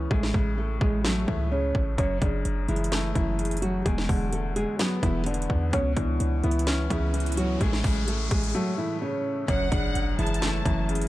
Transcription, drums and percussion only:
0.11 kick
0.23 snare
0.34 kick
0.81 kick
1.05 snare
1.28 kick
1.75 kick
1.98 kick, closed hi-hat
2.22 kick, closed hi-hat
2.45 closed hi-hat
2.68 closed hi-hat
2.76 closed hi-hat
2.84 closed hi-hat
2.92 snare, closed hi-hat
3.15 kick, closed hi-hat
3.39 closed hi-hat
3.45 closed hi-hat
3.51 closed hi-hat
3.57 closed hi-hat
3.62 closed hi-hat
3.86 kick, closed hi-hat
3.98 snare
4.09 kick, open hi-hat
4.33 closed hi-hat
4.56 closed hi-hat
4.79 snare, closed hi-hat
5.03 kick, closed hi-hat
5.26 closed hi-hat
5.34 closed hi-hat
5.42 closed hi-hat
5.50 kick
5.73 kick, closed hi-hat
5.97 kick, closed hi-hat
6.20 closed hi-hat
6.43 closed hi-hat
6.51 closed hi-hat
6.59 closed hi-hat
6.67 snare, closed hi-hat
6.90 kick, closed hi-hat
7.14 closed hi-hat
7.20 closed hi-hat
7.26 closed hi-hat
7.32 closed hi-hat
7.37 closed hi-hat
7.61 kick, closed hi-hat
7.73 snare
7.84 kick, open hi-hat
8.08 closed hi-hat
8.31 kick, closed hi-hat
8.44 closed hi-hat
9.48 kick, closed hi-hat
9.72 kick, closed hi-hat
9.95 closed hi-hat
10.19 closed hi-hat
10.27 closed hi-hat
10.34 closed hi-hat
10.42 snare, closed hi-hat
10.66 kick, closed hi-hat
10.89 closed hi-hat
10.95 closed hi-hat
11.01 closed hi-hat

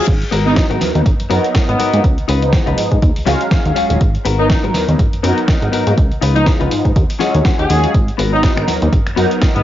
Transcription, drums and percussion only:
0.07 kick, closed hi-hat, crash
0.22 closed hi-hat
0.32 open hi-hat
0.56 kick, snare, closed hi-hat
0.71 closed hi-hat
0.81 snare, open hi-hat
0.95 closed hi-hat
1.06 kick, closed hi-hat
1.20 closed hi-hat
1.31 open hi-hat
1.44 closed hi-hat
1.55 kick, snare, closed hi-hat
1.69 closed hi-hat
1.80 open hi-hat
1.94 closed hi-hat
2.04 kick, closed hi-hat
2.18 closed hi-hat
2.29 open hi-hat
2.43 closed hi-hat
2.53 kick, snare, closed hi-hat
2.67 closed hi-hat
2.78 open hi-hat
2.92 kick, closed hi-hat
3.02 kick, closed hi-hat
3.16 open hi-hat
3.27 snare, open hi-hat
3.41 closed hi-hat
3.51 kick, snare, closed hi-hat
3.66 closed hi-hat
3.76 open hi-hat
3.90 closed hi-hat
4.01 kick, closed hi-hat
4.15 closed hi-hat
4.25 open hi-hat
4.50 kick, snare, closed hi-hat
4.64 closed hi-hat
4.74 snare, open hi-hat
4.89 closed hi-hat
4.99 kick, closed hi-hat
5.13 closed hi-hat
5.24 open hi-hat
5.38 closed hi-hat
5.48 kick, snare, closed hi-hat
5.62 closed hi-hat
5.73 open hi-hat
5.87 closed hi-hat
5.98 kick, closed hi-hat
6.12 closed hi-hat
6.22 open hi-hat
6.36 closed hi-hat
6.46 kick, snare, closed hi-hat
6.61 closed hi-hat
6.71 open hi-hat
6.85 kick, closed hi-hat
6.96 kick, closed hi-hat
7.10 open hi-hat
7.20 snare, open hi-hat
7.34 closed hi-hat
7.45 kick, snare, closed hi-hat
7.59 closed hi-hat
7.70 open hi-hat
7.84 closed hi-hat
7.94 kick, closed hi-hat
8.08 closed hi-hat
8.19 open hi-hat
8.43 kick, snare, closed hi-hat
8.58 finger snap, closed hi-hat
8.68 snare, open hi-hat
8.82 closed hi-hat
8.93 kick, closed hi-hat
9.07 finger snap, closed hi-hat
9.17 open hi-hat
9.31 closed hi-hat
9.42 kick, snare, closed hi-hat
9.56 closed hi-hat

